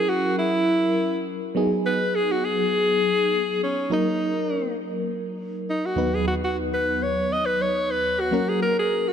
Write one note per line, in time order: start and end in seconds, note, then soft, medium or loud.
0.00 1.51 F#3 medium
0.00 1.52 C#4 medium
0.00 1.52 E4 medium
0.00 0.10 G#4 loud
0.00 1.53 A#4 medium
0.09 0.38 F#4 medium
0.39 1.23 E4 medium
1.55 3.87 F#3 medium
1.55 3.87 B3 medium
1.55 3.87 D#4 medium
1.55 3.88 G#4 medium
1.86 2.17 B4 loud
2.15 2.33 G#4 loud
2.31 2.46 F#4 medium
2.45 3.62 G#4 loud
3.63 3.90 C#4 medium
3.90 5.92 F#3 medium
3.90 5.93 A#3 medium
3.90 5.93 D#4 medium
3.90 4.77 D#4 medium
3.90 5.94 A#4 medium
5.70 5.87 D#4 medium
5.86 6.16 F#4 medium
5.96 8.28 D#2 medium
5.96 8.28 F#3 medium
5.96 8.28 B3 medium
5.96 8.29 D#4 medium
5.96 8.29 B4 medium
6.15 6.27 G#4 medium
6.28 6.35 F#4 medium
6.44 6.57 F#4 medium
6.74 7.04 B4 medium
7.03 7.34 C#5 medium
7.32 7.47 D#5 loud
7.46 7.63 B4 loud
7.62 7.92 C#5 medium
7.91 8.22 B4 loud
8.20 8.50 F#4 medium
8.31 9.13 F#3 medium
8.31 9.13 A#3 medium
8.31 9.13 C#4 medium
8.31 9.13 A#4 medium
8.49 8.62 G#4 medium
8.62 8.77 A#4 medium
8.79 9.10 G#4 medium
9.08 9.13 F#4 medium